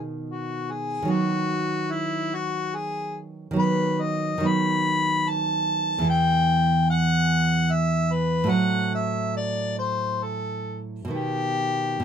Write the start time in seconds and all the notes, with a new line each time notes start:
Already playing: B2 D#3 B3
0.30 F#4
0.71 G#4
1.02 D#3 F#3
1.08 B3 F#4
1.91 E4
2.34 F#4
2.75 G#4
3.51 D#3 F#3
3.56 B3 B4
4.01 D#5
4.38 D#3 F#3
4.43 B3 B5
5.29 A5
5.98 E2 E3
6.04 B3
6.09 G5
6.90 F#5
7.72 E5
8.13 B4
8.44 A2 F#3
8.49 C4 F#5
8.94 E5
9.37 D5
9.79 C5
10.23 A4
11.05 B2 D#3
11.11 B3 G4
12.00 B2